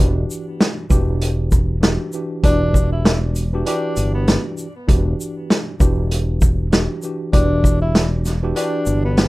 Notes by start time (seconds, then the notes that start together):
Already playing: E3
0.00 E1 D4 F#4 G4
0.31 shaker
0.61 snare, closed hi-hat
0.90 E1 E3 D4 F#4 G4, kick, shaker
1.22 closed hi-hat
1.52 kick, shaker
1.81 E3 D4 F#4 G4, snare, closed hi-hat
2.13 E3 D4 F#4 G4, shaker
2.43 E1 E3 D4 F#4 G4, kick, closed hi-hat
2.74 kick, shaker
2.92 E4
3.05 snare, closed hi-hat
3.36 closed hi-hat, shaker
3.53 E3 D4 F#4 G4
3.66 E3 D4 F#4 G4, closed hi-hat
3.97 G1, closed hi-hat, shaker
4.14 B3
4.28 snare, closed hi-hat
4.58 shaker
4.87 E1 E3 D4 F#4 G4, kick, closed hi-hat
5.21 shaker
5.50 snare, closed hi-hat
5.80 E1 E3 D4 F#4 G4, kick, shaker
6.11 closed hi-hat
6.41 kick, shaker
6.71 E3 D4 F#4 G4, snare, closed hi-hat
7.02 E3 D4 F#4 G4, shaker
7.33 E1 E3 D4 F#4 G4, kick, closed hi-hat
7.64 kick, shaker
7.82 E4
7.95 snare, closed hi-hat
8.25 snare, closed hi-hat, shaker
8.43 E3 D4 F#4 G4
8.55 E3 D4 F#4 G4, closed hi-hat
8.86 G1, shaker
9.05 B3
9.17 snare, closed hi-hat